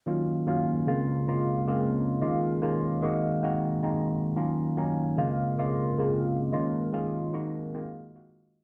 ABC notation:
X:1
M:4/4
L:1/16
Q:1/4=111
K:Ebdor
V:1 name="Tine electric piano"
[E,G,B,DF]2 z [E,G,B,DF]2 z [D,A,B,CF]2 z [D,A,B,CF]2 z [D,A,B,CF]3 z | [E,A,B,DF]2 z [E,A,B,DF]2 z [E,A,B,CG]2 z [E,A,B,CG]2 z [E,A,B,CE]3 z | [E,G,B,DF]2 z [E,G,B,DE]2 z [D,A,B,CF]2 z [D,A,B,CF]2 z [D,A,B,CF]3 z | [E,A,B,DF]2 z [E,A,B,DF]2 z [E,A,B,CG]2 z [E,A,B,CF]2 z [E,A,B,CG]3 z |]